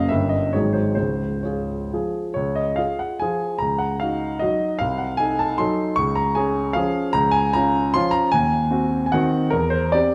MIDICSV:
0, 0, Header, 1, 2, 480
1, 0, Start_track
1, 0, Tempo, 429492
1, 1087, Time_signature, 3, 2, 24, 8
1, 1087, Tempo, 475059
1, 2047, Tempo, 428878
1, 3487, Tempo, 397614
1, 6367, Tempo, 388853
1, 10207, Tempo, 414365
1, 11876, End_track
2, 0, Start_track
2, 0, Title_t, "Grand piano"
2, 0, Program_c, 0, 0
2, 0, Control_c, 0, 64, 127
2, 0, Note_on_c, 0, 30, 46
2, 0, Note_on_c, 0, 42, 55
2, 0, Note_on_c, 0, 58, 39
2, 0, Note_on_c, 0, 61, 38
2, 0, Note_on_c, 0, 70, 41
2, 0, Note_on_c, 0, 75, 78
2, 0, Note_on_c, 0, 77, 73
2, 97, Note_on_c, 0, 76, 73
2, 113, Note_on_c, 0, 55, 38
2, 115, Note_on_c, 0, 31, 46
2, 123, Note_on_c, 0, 43, 52
2, 125, Note_off_c, 0, 61, 0
2, 125, Note_on_c, 0, 61, 37
2, 130, Note_off_c, 0, 70, 0
2, 130, Note_on_c, 0, 70, 38
2, 137, Control_c, 0, 64, 0
2, 149, Note_off_c, 0, 42, 0
2, 151, Note_off_c, 0, 58, 0
2, 151, Note_off_c, 0, 75, 0
2, 152, Note_off_c, 0, 30, 0
2, 153, Note_off_c, 0, 77, 0
2, 327, Note_on_c, 0, 75, 62
2, 350, Control_c, 0, 64, 127
2, 351, Note_off_c, 0, 76, 0
2, 551, Note_off_c, 0, 55, 0
2, 557, Note_off_c, 0, 61, 0
2, 560, Note_off_c, 0, 70, 0
2, 583, Note_off_c, 0, 31, 0
2, 583, Note_off_c, 0, 75, 0
2, 586, Note_off_c, 0, 43, 0
2, 590, Note_on_c, 0, 73, 61
2, 604, Note_on_c, 0, 44, 45
2, 606, Note_on_c, 0, 54, 35
2, 610, Note_on_c, 0, 63, 35
2, 616, Note_on_c, 0, 32, 43
2, 619, Control_c, 0, 64, 0
2, 627, Note_on_c, 0, 68, 35
2, 814, Note_on_c, 0, 72, 56
2, 835, Note_off_c, 0, 73, 0
2, 837, Control_c, 0, 64, 127
2, 1043, Note_off_c, 0, 72, 0
2, 1045, Note_off_c, 0, 54, 0
2, 1046, Note_off_c, 0, 63, 0
2, 1055, Note_off_c, 0, 68, 0
2, 1060, Note_on_c, 0, 72, 58
2, 1074, Note_off_c, 0, 44, 0
2, 1080, Note_off_c, 0, 32, 0
2, 1082, Note_on_c, 0, 25, 38
2, 1083, Note_on_c, 0, 37, 45
2, 1101, Control_c, 0, 64, 0
2, 1316, Control_c, 0, 64, 127
2, 1545, Note_off_c, 0, 25, 0
2, 1545, Note_off_c, 0, 37, 0
2, 1548, Note_on_c, 0, 73, 44
2, 1549, Note_off_c, 0, 72, 0
2, 1567, Note_on_c, 0, 65, 32
2, 1572, Note_on_c, 0, 68, 37
2, 2010, Note_off_c, 0, 65, 0
2, 2012, Note_off_c, 0, 68, 0
2, 2041, Note_off_c, 0, 73, 0
2, 2058, Control_c, 0, 64, 0
2, 2059, Note_on_c, 0, 53, 36
2, 2060, Note_on_c, 0, 65, 34
2, 2067, Note_on_c, 0, 68, 41
2, 2496, Note_off_c, 0, 53, 0
2, 2496, Note_off_c, 0, 65, 0
2, 2500, Note_off_c, 0, 68, 0
2, 2513, Note_on_c, 0, 73, 68
2, 2538, Note_on_c, 0, 37, 51
2, 2754, Note_on_c, 0, 75, 62
2, 2756, Note_off_c, 0, 73, 0
2, 2759, Control_c, 0, 64, 127
2, 2983, Note_on_c, 0, 77, 68
2, 3002, Note_off_c, 0, 37, 0
2, 3008, Note_off_c, 0, 75, 0
2, 3011, Note_on_c, 0, 65, 39
2, 3012, Note_on_c, 0, 68, 40
2, 3032, Control_c, 0, 64, 0
2, 3243, Note_off_c, 0, 77, 0
2, 3243, Note_on_c, 0, 78, 61
2, 3441, Note_off_c, 0, 65, 0
2, 3441, Note_off_c, 0, 68, 0
2, 3472, Note_on_c, 0, 80, 66
2, 3480, Note_off_c, 0, 78, 0
2, 3496, Note_on_c, 0, 53, 43
2, 3499, Note_on_c, 0, 65, 44
2, 3499, Note_on_c, 0, 68, 49
2, 3919, Note_off_c, 0, 53, 0
2, 3921, Note_off_c, 0, 65, 0
2, 3921, Note_off_c, 0, 68, 0
2, 3941, Note_on_c, 0, 82, 77
2, 3953, Note_off_c, 0, 80, 0
2, 3979, Note_on_c, 0, 37, 47
2, 4182, Note_on_c, 0, 78, 67
2, 4185, Control_c, 0, 64, 127
2, 4188, Note_off_c, 0, 82, 0
2, 4437, Note_off_c, 0, 78, 0
2, 4438, Note_on_c, 0, 77, 73
2, 4440, Note_off_c, 0, 37, 0
2, 4461, Note_on_c, 0, 63, 41
2, 4475, Note_on_c, 0, 66, 45
2, 4904, Note_off_c, 0, 63, 0
2, 4911, Note_off_c, 0, 66, 0
2, 4917, Note_on_c, 0, 75, 70
2, 4941, Note_off_c, 0, 77, 0
2, 4947, Note_on_c, 0, 66, 49
2, 4948, Note_on_c, 0, 54, 45
2, 4948, Note_on_c, 0, 63, 45
2, 4957, Control_c, 0, 64, 0
2, 5370, Note_off_c, 0, 54, 0
2, 5370, Note_off_c, 0, 66, 0
2, 5371, Note_off_c, 0, 63, 0
2, 5390, Note_on_c, 0, 77, 86
2, 5402, Note_off_c, 0, 75, 0
2, 5417, Note_on_c, 0, 36, 56
2, 5627, Note_on_c, 0, 78, 64
2, 5636, Note_off_c, 0, 77, 0
2, 5656, Control_c, 0, 64, 127
2, 5857, Note_on_c, 0, 80, 84
2, 5878, Note_off_c, 0, 36, 0
2, 5880, Note_off_c, 0, 78, 0
2, 5884, Note_on_c, 0, 63, 46
2, 5890, Note_on_c, 0, 69, 46
2, 6116, Note_off_c, 0, 80, 0
2, 6119, Note_on_c, 0, 81, 74
2, 6316, Note_off_c, 0, 63, 0
2, 6319, Note_off_c, 0, 69, 0
2, 6347, Note_on_c, 0, 84, 79
2, 6356, Note_on_c, 0, 54, 53
2, 6361, Note_off_c, 0, 81, 0
2, 6366, Note_on_c, 0, 69, 57
2, 6368, Note_on_c, 0, 63, 52
2, 6384, Control_c, 0, 64, 0
2, 6788, Note_off_c, 0, 54, 0
2, 6793, Note_off_c, 0, 69, 0
2, 6794, Note_off_c, 0, 63, 0
2, 6815, Note_on_c, 0, 85, 94
2, 6831, Note_off_c, 0, 84, 0
2, 6846, Note_on_c, 0, 37, 61
2, 7058, Note_on_c, 0, 82, 80
2, 7068, Note_off_c, 0, 85, 0
2, 7074, Control_c, 0, 64, 127
2, 7299, Note_on_c, 0, 80, 72
2, 7315, Note_on_c, 0, 68, 53
2, 7316, Note_off_c, 0, 37, 0
2, 7317, Note_off_c, 0, 82, 0
2, 7321, Note_on_c, 0, 61, 47
2, 7750, Note_off_c, 0, 68, 0
2, 7753, Note_off_c, 0, 61, 0
2, 7772, Note_on_c, 0, 77, 88
2, 7790, Note_off_c, 0, 80, 0
2, 7798, Note_on_c, 0, 53, 55
2, 7813, Note_on_c, 0, 61, 54
2, 7815, Note_on_c, 0, 68, 59
2, 7818, Control_c, 0, 64, 0
2, 8227, Note_off_c, 0, 53, 0
2, 8235, Note_off_c, 0, 61, 0
2, 8236, Note_off_c, 0, 68, 0
2, 8261, Note_on_c, 0, 82, 100
2, 8262, Note_off_c, 0, 77, 0
2, 8278, Note_on_c, 0, 37, 67
2, 8474, Control_c, 0, 64, 127
2, 8490, Note_on_c, 0, 80, 92
2, 8504, Note_off_c, 0, 82, 0
2, 8748, Note_off_c, 0, 37, 0
2, 8751, Note_off_c, 0, 80, 0
2, 8761, Note_on_c, 0, 82, 95
2, 8780, Note_on_c, 0, 61, 51
2, 8793, Note_on_c, 0, 65, 55
2, 9222, Note_off_c, 0, 61, 0
2, 9230, Note_off_c, 0, 65, 0
2, 9258, Note_on_c, 0, 84, 99
2, 9262, Note_off_c, 0, 82, 0
2, 9269, Note_on_c, 0, 53, 63
2, 9278, Control_c, 0, 64, 0
2, 9280, Note_on_c, 0, 61, 64
2, 9287, Note_on_c, 0, 65, 69
2, 9473, Note_on_c, 0, 82, 94
2, 9492, Note_off_c, 0, 84, 0
2, 9678, Note_off_c, 0, 53, 0
2, 9684, Note_off_c, 0, 61, 0
2, 9688, Note_off_c, 0, 65, 0
2, 9709, Note_off_c, 0, 82, 0
2, 9726, Note_on_c, 0, 80, 100
2, 9750, Note_on_c, 0, 39, 66
2, 9912, Control_c, 0, 64, 127
2, 10208, Note_off_c, 0, 39, 0
2, 10208, Note_on_c, 0, 60, 53
2, 10218, Note_on_c, 0, 66, 58
2, 10603, Note_off_c, 0, 80, 0
2, 10620, Note_on_c, 0, 80, 64
2, 10649, Note_off_c, 0, 60, 0
2, 10654, Note_off_c, 0, 66, 0
2, 10686, Note_on_c, 0, 78, 90
2, 10699, Note_off_c, 0, 80, 0
2, 10699, Note_on_c, 0, 60, 60
2, 10704, Note_on_c, 0, 51, 62
2, 10710, Note_on_c, 0, 66, 60
2, 10711, Control_c, 0, 64, 0
2, 11111, Note_off_c, 0, 60, 0
2, 11114, Note_off_c, 0, 51, 0
2, 11117, Note_off_c, 0, 66, 0
2, 11132, Note_on_c, 0, 70, 87
2, 11150, Note_off_c, 0, 78, 0
2, 11162, Note_on_c, 0, 40, 62
2, 11360, Note_on_c, 0, 72, 77
2, 11371, Control_c, 0, 64, 127
2, 11374, Note_off_c, 0, 70, 0
2, 11615, Note_on_c, 0, 74, 86
2, 11619, Note_off_c, 0, 72, 0
2, 11621, Note_off_c, 0, 40, 0
2, 11636, Note_on_c, 0, 60, 44
2, 11643, Note_on_c, 0, 67, 52
2, 11648, Control_c, 0, 64, 0
2, 11876, Note_off_c, 0, 60, 0
2, 11876, Note_off_c, 0, 67, 0
2, 11876, Note_off_c, 0, 74, 0
2, 11876, End_track
0, 0, End_of_file